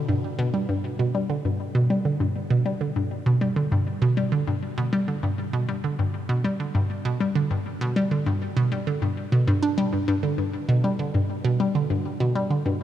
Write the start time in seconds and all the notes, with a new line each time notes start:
0.09 G2
0.39 B2
0.54 G3
0.69 G2
0.99 B2
1.15 G3
1.30 D3
1.45 G2
1.75 B2
1.90 G3
2.05 D3
2.20 G2
2.50 B2
2.66 G3
2.81 D3
2.96 G2
3.26 B2
3.41 G3
3.56 D3
3.72 G2
4.02 B2
4.17 G3
4.32 D3
4.47 G2
4.78 B2
4.93 G3
5.08 D3
5.23 G2
5.53 B2
5.69 G3
5.84 D3
5.99 G2
6.29 B2
6.44 G3
6.60 D3
6.75 G2
7.05 B2
7.20 G3
7.35 D3
7.51 G2
7.81 B2
7.96 G3
8.11 D3
8.26 G2
8.57 B2
8.72 G3
8.87 D3
9.02 G2
9.32 B2
9.47 G2
9.63 D4
9.78 G3
9.93 G2
10.08 G2
10.23 D3
10.38 G2
10.69 B2
10.84 G3
10.99 D3
11.14 G2
11.45 B2
11.60 G3
11.75 D3
11.90 G2
12.20 B2
12.35 G3
12.50 D3
12.66 G2